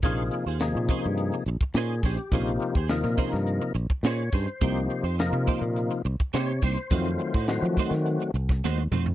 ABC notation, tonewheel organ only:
X:1
M:4/4
L:1/8
Q:1/4=105
K:Cphr
V:1 name="Tonewheel organ"
F2 z4 A G- | G2 F z3 d c- | c2 B z3 d c- | c2 c z4 z |]
V:2 name="Tonewheel organ"
[C,F,B,EA] z [C,F,B,EA]3 z3 | [C,F,B,EF] z [C,F,B,EB]3 z3 | [C,F,B,EG] z [C,F,B,EF]3 z3 | [E,_G,=A,CF] z [E,G,A,C_G]3 z3 |]